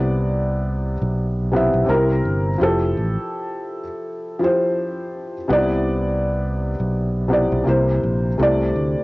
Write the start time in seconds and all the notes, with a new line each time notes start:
Already playing: C2 C3 B3 E4 D5
1.02 B1
1.52 C3 B3 E4
1.56 E5
1.74 B1
1.84 C3 C4 D#4
1.89 C2 A#4
1.94 E4
2.25 G1
2.58 F1 F3 E4 G4
2.63 A4
2.97 A1
4.39 F3 E4 G4
4.44 C5
5.48 C2 C3 B3 D#4
5.53 D5
5.58 E4
6.80 B1
7.28 C3 B3 E4
7.33 D5
7.52 B1
7.64 C2 C3 A#3 E4
7.69 C5
8.03 A#1
8.38 C2 C3 A3 E4
8.43 D5
8.76 D2